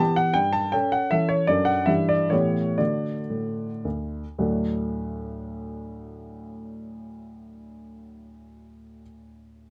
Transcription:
0.00 0.32 E3 soft
0.00 0.32 B3 soft
0.00 0.33 G4 soft
0.00 0.17 A5 medium
0.16 0.36 F#5 medium
0.34 0.72 G2 medium
0.34 0.53 G5 medium
0.53 0.73 A5 medium
0.72 1.08 C#4 medium
0.72 1.09 A4 medium
0.72 0.93 G5 medium
0.92 1.12 F#5 medium
1.11 1.45 E3 soft
1.11 1.45 C#4 soft
1.11 1.45 A4 soft
1.11 1.30 E5 medium
1.29 1.48 C#5 medium
1.47 1.87 F#2 medium
1.47 1.84 F#3 soft
1.47 1.85 D4 soft
1.47 1.85 A4 soft
1.47 1.67 D5 medium
1.65 1.87 F#5 medium
1.86 2.30 G2 medium
1.86 2.28 E3 soft
1.86 2.28 D4 soft
1.86 2.28 G4 soft
1.86 2.09 E5 medium
2.09 2.32 D5 medium
2.30 2.77 A2 soft
2.30 2.75 E3 soft
2.30 2.75 B3 soft
2.30 2.75 G4 soft
2.30 2.78 C#5 medium
2.78 3.15 D3 soft
2.78 3.20 A3 soft
2.78 3.20 F#4 soft
2.78 3.84 D5 medium
3.30 3.68 A2 soft
3.85 4.23 D2 soft
4.39 9.01 D2 soft
4.39 9.01 A2 soft
4.39 9.01 F#3 soft
4.39 9.02 A3 soft
4.39 9.02 D4 soft
4.39 9.02 F#4 soft

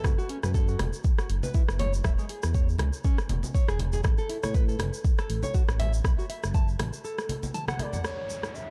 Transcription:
0.04 0.16 F#1 loud
0.04 0.12 F#4 medium
0.04 kick loud
0.04 cross-stick medium
0.04 low conga medium
0.04 shaker medium
0.18 0.28 F#4 loud
0.18 shaker soft
0.29 0.37 C#4 medium
0.29 open hi-hat medium
0.43 0.76 F#2 loud
0.43 0.54 B4 medium
0.43 cross-stick medium
0.43 high conga medium
0.43 shaker medium
0.54 0.67 A4 loud
0.54 kick loud
0.54 shaker medium
0.68 0.78 F#4 medium
0.68 shaker soft
0.79 0.91 E1 medium
0.79 cross-stick medium
0.79 open hi-hat medium
0.79 high conga loud
0.93 shaker medium
1.04 kick loud
1.04 shaker medium
1.18 1.28 F#4 medium
1.18 cross-stick medium
1.18 shaker soft
1.29 1.41 F#1 medium
1.29 open hi-hat medium
1.43 1.54 B4 medium
1.43 high conga medium
1.43 shaker medium
1.54 1.62 E4 medium
1.54 kick loud
1.54 shaker medium
1.68 2.01 F#1 loud
1.68 cross-stick medium
1.68 shaker soft
1.79 1.92 C#5 loud
1.79 open hi-hat medium
1.79 low conga loud
1.93 shaker medium
2.04 2.16 E1 loud
2.04 2.12 E5 medium
2.04 kick loud
2.04 cross-stick medium
2.04 low conga medium
2.04 shaker medium
2.18 2.24 G#3 medium
2.18 shaker soft
2.29 2.43 G#4 medium
2.29 open hi-hat medium
2.43 2.76 E2 loud
2.43 cross-stick medium
2.43 shaker medium
2.54 2.68 C#5 medium
2.54 kick loud
2.54 shaker medium
2.69 shaker soft
2.78 2.91 C#2 medium
2.78 cross-stick medium
2.78 open hi-hat medium
2.78 high conga loud
2.93 shaker medium
3.04 3.17 C#4 medium
3.04 kick loud
3.04 shaker medium
3.18 cross-stick medium
3.18 shaker soft
3.29 3.41 E1 medium
3.29 open hi-hat medium
3.29 high conga medium
3.43 high conga medium
3.43 shaker medium
3.54 3.68 C#5 medium
3.54 kick loud
3.54 shaker medium
3.68 4.01 E1 loud
3.68 3.78 G#4 medium
3.68 cross-stick medium
3.68 shaker soft
3.79 open hi-hat medium
3.79 high conga medium
3.93 4.03 G#4 medium
3.93 low conga medium
3.93 shaker medium
4.04 4.16 A1 medium
4.04 4.12 A4 medium
4.04 kick loud
4.04 cross-stick medium
4.04 low conga medium
4.04 shaker medium
4.18 4.28 A4 loud
4.18 shaker soft
4.29 4.37 E4 medium
4.29 open hi-hat medium
4.43 4.76 A2 loud
4.43 4.54 C#5 medium
4.43 cross-stick medium
4.43 high conga medium
4.43 shaker medium
4.54 4.67 B4 loud
4.54 kick loud
4.54 shaker medium
4.68 4.78 A4 medium
4.68 shaker soft
4.79 4.91 F#1 medium
4.79 cross-stick medium
4.79 open hi-hat medium
4.79 high conga medium
4.93 shaker medium
5.04 kick loud
5.04 shaker medium
5.18 5.28 A4 medium
5.18 cross-stick medium
5.18 shaker soft
5.29 5.41 A1 medium
5.29 open hi-hat medium
5.43 5.54 C#5 medium
5.43 high conga medium
5.43 shaker medium
5.54 5.62 F#4 medium
5.54 kick loud
5.54 shaker medium
5.69 6.01 A1 loud
5.69 cross-stick medium
5.69 shaker soft
5.79 5.92 E5 loud
5.79 open hi-hat medium
5.79 low conga loud
5.93 shaker medium
6.04 6.16 B1 medium
6.04 6.12 B5 medium
6.04 kick loud
6.04 cross-stick medium
6.04 low conga medium
6.04 shaker medium
6.19 6.24 F#4 medium
6.19 shaker soft
6.30 6.43 E5 medium
6.30 open hi-hat medium
6.43 6.76 F#1 loud
6.43 cross-stick medium
6.43 shaker medium
6.54 6.68 A5 medium
6.54 kick loud
6.54 shaker medium
6.68 shaker soft
6.79 6.91 A1 medium
6.79 cross-stick medium
6.79 open hi-hat medium
6.79 high conga medium
6.93 shaker medium
7.05 7.17 A4 medium
7.05 shaker medium
7.18 cross-stick medium
7.18 shaker soft
7.29 open hi-hat medium
7.29 high conga medium
7.43 high conga medium
7.43 shaker medium
7.54 7.68 A5 medium
7.54 open hi-hat medium
7.54 high tom medium
7.54 shaker medium
7.68 7.78 F#5 medium
7.68 cross-stick medium
7.68 high tom medium
7.68 high conga medium
7.68 shaker soft
7.79 8.03 D5 medium
7.79 7.84 E5 medium
7.79 open hi-hat medium
7.79 high conga loud
7.93 8.03 F#5 medium
7.93 mid tom medium
7.93 low conga medium
7.93 shaker medium
8.04 8.56 C#5 medium
8.04 cross-stick medium
8.04 downlifter medium
8.04 shaker soft
8.30 shaker medium
8.43 cross-stick medium
8.43 shaker soft
8.55 8.70 E5 medium
8.55 shaker soft

